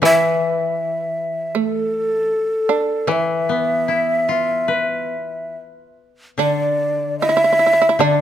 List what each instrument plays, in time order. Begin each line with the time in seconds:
0.02 koto E3, shamisen E4, shakuhachi E5
1.55 shamisen A3, shakuhachi A4
2.69 shamisen D4
3.07 koto E3, shamisen E4
3.11 shakuhachi E5
3.49 koto B3
3.88 koto E4
4.29 koto F4
4.68 koto B4
6.38 koto D3, shamisen D4, shakuhachi D5
7.20 shamisen E4, shakuhachi D#5
7.29 shamisen E4
7.35 shamisen E4, shakuhachi E5
7.44 shamisen E4
7.53 shamisen E4
7.59 shamisen E4
7.66 shamisen E4
7.73 shamisen E4
7.82 shamisen E4
7.89 shamisen E4
7.99 koto D3, shamisen D4, shakuhachi D5